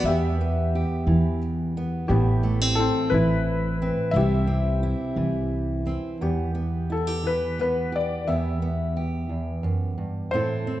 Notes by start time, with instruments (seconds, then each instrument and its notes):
Already playing: steel-string acoustic guitar E3
0.04 upright bass E2, steel-string acoustic guitar E2 B3 G4, felt piano G4 E5
0.41 steel-string acoustic guitar B3
0.75 steel-string acoustic guitar G4
1.07 upright bass E2, steel-string acoustic guitar E3
1.77 steel-string acoustic guitar B3
2.08 upright bass A1, steel-string acoustic guitar A2 E4, felt piano B3 G4
2.43 steel-string acoustic guitar A3
2.61 steel-string acoustic guitar C4
2.75 steel-string acoustic guitar E4, felt piano A4
2.80 felt piano C4
3.10 upright bass A1, steel-string acoustic guitar E3, felt piano B4
3.14 felt piano E4
3.82 steel-string acoustic guitar C4
4.11 upright bass C2, steel-string acoustic guitar C3 C4, felt piano E5
4.16 steel-string acoustic guitar E4, felt piano G4
4.47 steel-string acoustic guitar C4
4.83 steel-string acoustic guitar E4
5.16 upright bass C2, steel-string acoustic guitar E3
5.87 steel-string acoustic guitar C4
6.21 steel-string acoustic guitar E2 B3, felt piano G4
6.55 steel-string acoustic guitar B3
6.90 steel-string acoustic guitar E4, felt piano A4
7.07 steel-string acoustic guitar G4
7.23 steel-string acoustic guitar E3, felt piano B4
7.59 steel-string acoustic guitar B3, felt piano B4
7.92 steel-string acoustic guitar G4, felt piano D5
8.27 steel-string acoustic guitar E2 B3 G4, felt piano E5
8.62 steel-string acoustic guitar B3
8.97 steel-string acoustic guitar G4
9.29 steel-string acoustic guitar E2
9.63 steel-string acoustic guitar F#2
9.98 steel-string acoustic guitar G2
10.31 steel-string acoustic guitar A2 C4 E4, felt piano C5
10.35 steel-string acoustic guitar A4
10.67 steel-string acoustic guitar C4